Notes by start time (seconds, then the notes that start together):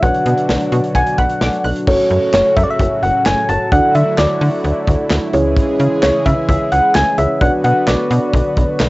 0.03 B1 B2 D3 F#3 D4 F#4 B4 D5 F#5, kick, closed hi-hat
0.14 closed hi-hat
0.26 B2 B3, closed hi-hat
0.37 closed hi-hat
0.49 B1 D4, snare
0.60 closed hi-hat
0.72 B2 F#4, closed hi-hat
0.84 closed hi-hat
0.95 B1 F#5 G#5, kick, closed hi-hat
1.07 closed hi-hat
1.18 B1 F#5 B5, kick, closed hi-hat
1.29 closed hi-hat
1.41 B1 D6, snare
1.53 closed hi-hat
1.64 B1 F#6, open hi-hat
1.76 closed hi-hat
1.87 F#1 A2 C#3 F#3 C#4 F#4 A4 C#5, kick, crash
2.10 F#2, closed hi-hat
2.33 F#1 C#5, snare, clap, closed hi-hat
2.57 F#2 E5, kick, closed hi-hat
2.64 D5
2.71 E5
2.79 F#1, kick, closed hi-hat
3.03 F#1 F#5, closed hi-hat
3.26 F#1 G#5, snare, clap, closed hi-hat
3.49 F#1 A5, closed hi-hat
3.72 D2 D3 A3 D4 E4 F#4 A4 D5 F#5, kick, closed hi-hat
3.95 D3 E5, closed hi-hat
4.18 D2 D5, snare, clap, closed hi-hat
4.41 D3, open hi-hat
4.64 D2, closed hi-hat
4.87 D2, kick, closed hi-hat
5.10 D2, snare, clap, closed hi-hat
5.33 C#2 C#3 E3 G#3 C#4 E4 G#4 C#5, closed hi-hat
5.57 kick, closed hi-hat
5.80 C#3, closed hi-hat
6.03 C#2 C#5, snare, clap, closed hi-hat
6.26 C#3 E5, kick, closed hi-hat
6.49 C#2 E5, kick, closed hi-hat
6.72 C#2 F#5, closed hi-hat
6.95 C#2 G#5, snare, clap, closed hi-hat
7.18 C#2 C#4 E4 G#4 C#5 E5, closed hi-hat
7.41 B1 D3 F#3 B3 D4 F#4 B4 D5 F#5, kick, closed hi-hat
7.64 B2 F#5, closed hi-hat
7.87 B1 D5, snare, clap, closed hi-hat
8.10 B2, closed hi-hat
8.33 B1, kick, closed hi-hat
8.57 B1, kick, closed hi-hat
8.80 B1, snare, clap, closed hi-hat